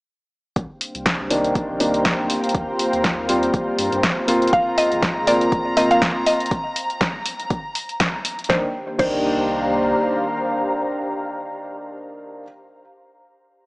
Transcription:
0.56 sub bass C2, analog synth pad A#3 C4 D4 G4 C5, ambient pad G5, kick, closed hi-hat
0.66 ambient pad F5
0.73 ambient pad C5
0.81 open hi-hat
0.95 sub bass C2, closed hi-hat
1.00 ambient pad A#5
1.06 kick, snare, closed hi-hat
1.30 felt piano D#3 A#3 D4, open hi-hat
1.45 closed hi-hat
1.55 kick, closed hi-hat
1.69 sub bass A#1
1.80 sub bass C2, felt piano D#3 A#3 D4, open hi-hat
1.94 closed hi-hat
2.05 kick, snare, closed hi-hat
2.19 sub bass A#1
2.30 analog synth pad F4, open hi-hat
2.44 closed hi-hat
2.49 closed hi-hat
2.55 sub bass D#2, kick, closed hi-hat
2.79 open hi-hat
2.93 sub bass D#2, closed hi-hat
3.04 kick, snare, closed hi-hat
3.28 felt piano G3 C4 F4, open hi-hat
3.43 closed hi-hat
3.54 kick, closed hi-hat
3.79 sub bass G2, open hi-hat
3.92 sub bass G2, closed hi-hat
4.03 kick, snare, closed hi-hat
4.28 sub bass D#1, felt piano A#3 C4 F4, open hi-hat
4.42 closed hi-hat
4.47 closed hi-hat
4.53 sub bass G#1, analog synth pad F4 G#4, synth pluck F5, violin section A#5, kick, closed hi-hat
4.78 synth pluck D#5, open hi-hat
4.92 sub bass G#1, closed hi-hat
5.02 kick, snare, closed hi-hat
5.27 felt piano A#3 C4 F4, synth pluck D5, open hi-hat
5.41 closed hi-hat
5.52 kick, closed hi-hat
5.66 sub bass F1
5.76 sub bass G#1, felt piano A#3 C4 F4, synth pluck D#5, open hi-hat
5.91 synth pluck F5, closed hi-hat
6.02 kick, snare, closed hi-hat
6.16 sub bass F1
6.26 synth pluck D#5, open hi-hat
6.40 closed hi-hat
6.46 closed hi-hat
6.51 kick, closed hi-hat
6.76 open hi-hat
6.90 closed hi-hat
7.01 kick, snare, closed hi-hat
7.26 open hi-hat
7.40 closed hi-hat
7.50 kick, closed hi-hat
7.75 open hi-hat
7.89 closed hi-hat
8.00 kick, snare, closed hi-hat
8.25 open hi-hat
8.39 closed hi-hat
8.44 closed hi-hat
8.49 sub bass C2, felt piano D#3 A#3 D4, analog synth pad D#3 A#3 D4 G4 C5, ambient pad G4, synth pluck C5, kick, snare
8.58 ambient pad C5
8.66 ambient pad F5
8.72 ambient pad A#5
8.98 sub bass C2, felt piano D#3 A#3 D4, synth pluck C5, kick, crash

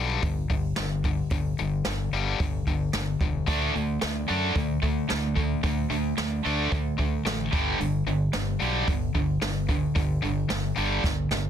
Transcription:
Already playing: fingered electric bass B1, distorted electric guitar G2 D3 G3
0.22 fingered electric bass G1, distorted electric guitar G2 D3, kick, open hi-hat
0.49 fingered electric bass G1, distorted electric guitar G2 D3, kick, open hi-hat
0.76 fingered electric bass G1, distorted electric guitar G2 D3, snare, open hi-hat
1.04 distorted electric guitar G2 D3, kick, open hi-hat
1.30 fingered electric bass G1, distorted electric guitar G2 D3, kick, open hi-hat
1.58 fingered electric bass G1, distorted electric guitar G2 D3, open hi-hat
1.85 fingered electric bass G1, distorted electric guitar G2 D3, snare, open hi-hat
2.12 fingered electric bass G1, distorted electric guitar G2 D3 G3, open hi-hat
2.40 fingered electric bass G1, distorted electric guitar G2 D3, kick, open hi-hat
2.67 fingered electric bass G1, distorted electric guitar G2 D3, kick, open hi-hat
2.93 fingered electric bass G1, distorted electric guitar G2 D3, snare, open hi-hat
3.20 fingered electric bass E1, distorted electric guitar G2 D3, kick, open hi-hat
3.47 fingered electric bass D2, distorted electric guitar D3 A3 D4, kick, open hi-hat
3.74 fingered electric bass D2, distorted electric guitar D3 A3, open hi-hat
4.01 fingered electric bass D2, distorted electric guitar D3 A3, snare, open hi-hat
4.28 fingered electric bass F#2, distorted electric guitar D3 A3 D4, open hi-hat
4.54 fingered electric bass D2, distorted electric guitar D3 A3, kick, open hi-hat
4.82 fingered electric bass D2, distorted electric guitar D3 A3, kick, open hi-hat
5.09 fingered electric bass D2, distorted electric guitar D3 A3, snare
5.35 distorted electric guitar D3 A3, kick, open hi-hat
5.63 fingered electric bass D2, distorted electric guitar D3 A3, kick, open hi-hat
5.90 fingered electric bass D2, distorted electric guitar D3 A3, open hi-hat
6.18 fingered electric bass D2, distorted electric guitar D3 A3, snare
6.45 fingered electric bass D2, distorted electric guitar D3 A3 D4, open hi-hat
6.72 fingered electric bass D2, distorted electric guitar D3 A3, kick, open hi-hat
6.98 fingered electric bass D2, distorted electric guitar D3 A3, kick, open hi-hat
7.25 fingered electric bass A1, distorted electric guitar D3 A3, snare, open hi-hat
7.52 fingered electric bass G1, distorted electric guitar G2 D3 G3, kick, open hi-hat
7.79 fingered electric bass G1, distorted electric guitar G2 D3, open hi-hat
8.06 fingered electric bass G1, distorted electric guitar G2 D3, open hi-hat
8.33 fingered electric bass G1, distorted electric guitar G2 D3, snare, open hi-hat
8.60 fingered electric bass B1, distorted electric guitar G2 D3 G3, open hi-hat
8.87 fingered electric bass G1, distorted electric guitar G2 D3, kick, open hi-hat
9.15 fingered electric bass G1, distorted electric guitar G2 D3, kick, open hi-hat
9.41 fingered electric bass G1, distorted electric guitar G2 D3, snare, open hi-hat
9.68 distorted electric guitar G2 D3, kick, open hi-hat
9.95 fingered electric bass G1, distorted electric guitar G2 D3, kick, open hi-hat
10.22 fingered electric bass G1, distorted electric guitar G2 D3, open hi-hat
10.49 fingered electric bass G1, distorted electric guitar G2 D3, snare, open hi-hat
10.76 fingered electric bass G1, distorted electric guitar G2 D3 G3, open hi-hat
11.04 fingered electric bass G1, distorted electric guitar G2 D3, kick, snare
11.31 fingered electric bass G1, distorted electric guitar G2 D3, snare

